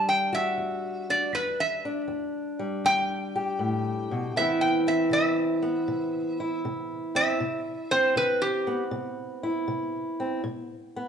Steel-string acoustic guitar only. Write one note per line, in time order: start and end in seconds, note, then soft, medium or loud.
0.00 0.52 E2 medium
0.00 2.59 G3 medium
0.00 1.08 D4 medium
0.33 1.31 F#4 medium
0.58 1.29 E2 medium
1.10 1.31 D4 medium
1.33 2.04 E2 medium
1.85 4.34 D4 medium
2.08 2.80 E2 medium
2.59 4.37 G3 medium
2.85 3.56 E2 medium
3.36 4.39 G4 medium
3.59 4.11 A2 medium
4.11 4.36 B2 medium
4.36 5.08 C3 medium
4.36 7.37 E3 medium
4.36 5.62 B3 medium
4.36 4.86 C4 medium
4.36 6.39 E4 medium
4.87 7.14 C4 medium
5.10 5.82 C3 medium
5.62 7.43 B3 medium
5.88 6.59 C3 medium
6.40 9.42 E4 medium
6.65 7.36 C3 medium
7.15 7.37 C4 medium
7.40 8.11 C3 medium
7.92 10.19 C4 medium
8.16 8.87 C3 medium
8.67 10.96 B3 medium
8.91 9.62 C3 medium
9.43 10.44 E4 medium
9.68 10.38 C3 medium
10.20 10.41 C4 medium
10.44 11.08 B2 medium
10.96 11.08 B3 medium